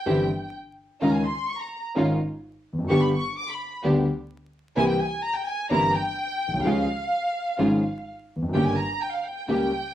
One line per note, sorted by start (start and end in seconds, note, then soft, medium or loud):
0.00 0.54 G5 medium
0.06 0.26 G1 medium
0.06 0.26 G2 medium
0.06 0.26 E3 medium
0.06 0.26 G3 medium
0.06 0.26 C4 medium
0.06 0.26 E4 medium
0.06 0.26 G4 medium
1.01 1.22 C#2 medium
1.01 1.22 C#3 medium
1.01 1.22 D#3 medium
1.01 1.22 G#3 medium
1.01 1.21 C#4 medium
1.01 1.22 C#4 medium
1.01 1.21 D#4 medium
1.01 1.21 F4 medium
1.01 1.22 F4 medium
1.01 1.12 A#5 medium
1.13 1.25 G#5 medium
1.25 1.49 C6 medium
1.49 1.61 C#6 medium
1.60 1.84 A#5 medium
1.95 2.16 G#1 medium
1.95 2.16 G#2 medium
1.95 2.16 D#3 medium
1.95 2.16 G#3 medium
1.95 2.16 C#4 medium
1.95 2.16 D#4 medium
1.95 2.16 F4 medium
2.73 2.79 E2 soft
2.78 2.84 F2 medium
2.84 2.90 F#2 medium
2.89 3.10 G1 medium
2.89 3.10 G2 medium
2.89 3.10 D3 medium
2.89 3.10 G3 medium
2.89 3.10 B3 medium
2.89 3.10 D4 medium
2.89 3.10 G4 medium
2.89 3.01 C#6 medium
3.02 3.14 B5 medium
3.14 3.36 C#6 medium
3.38 3.49 D6 medium
3.50 3.73 B5 medium
3.83 4.04 D2 medium
3.83 4.04 D3 medium
3.83 4.04 G3 medium
3.83 4.03 B3 medium
3.83 4.04 B3 medium
3.83 4.03 D4 medium
3.83 4.03 G4 medium
3.83 4.04 G4 medium
4.76 4.97 C2 medium
4.76 4.97 C3 medium
4.76 4.96 E3 medium
4.76 4.96 A#3 medium
4.76 4.97 A#3 medium
4.76 4.96 C4 medium
4.76 4.97 C4 medium
4.76 4.96 E4 medium
4.76 4.97 G4 medium
4.76 4.88 G#5 loud
4.89 5.00 G5 medium
5.00 5.24 G#5 medium
5.23 5.35 A#5 loud
5.35 5.47 G5 medium
5.46 5.70 G#5 medium
5.70 5.91 G1 medium
5.70 5.91 G2 medium
5.70 5.90 E3 medium
5.70 5.90 A#3 medium
5.70 5.90 C4 medium
5.70 5.91 C4 medium
5.70 5.90 E4 medium
5.70 5.91 G4 medium
5.70 5.92 A#5 loud
5.94 6.65 G5 medium
6.48 6.53 A#1 soft
6.53 6.59 B1 medium
6.60 6.65 C2 medium
6.64 6.85 C#2 medium
6.64 6.85 C#3 medium
6.64 6.85 F3 medium
6.64 6.84 G#3 medium
6.64 6.85 G#3 medium
6.64 6.84 C#4 medium
6.64 6.85 C#4 medium
6.64 6.84 F4 medium
6.64 6.85 G#4 medium
6.64 8.06 F5 medium
7.58 7.79 G#1 medium
7.58 7.79 G#2 medium
7.58 7.79 F3 medium
7.58 7.78 G#3 medium
7.58 7.79 G#3 medium
7.58 7.79 C#4 medium
7.58 7.78 F4 medium
7.58 7.79 G#4 medium
8.36 8.42 E2 soft
8.42 8.48 F2 medium
8.49 8.54 F#2 medium
8.53 8.74 G1 medium
8.53 8.74 G2 medium
8.53 8.74 C#3 medium
8.53 8.74 G3 medium
8.53 8.74 A#3 medium
8.53 8.74 C#4 medium
8.53 8.74 G4 medium
8.53 8.66 G5 medium
8.66 8.78 G#5 medium
8.79 9.02 A#5 medium
9.02 9.14 G5 medium
9.14 9.25 F5 medium
9.26 9.48 G5 medium
9.48 9.68 C#2 medium
9.48 9.68 C#3 medium
9.48 9.69 G3 medium
9.48 9.68 A#3 medium
9.48 9.68 C#4 medium
9.48 9.68 G4 medium
9.48 9.69 G4 medium
9.48 9.94 G5 medium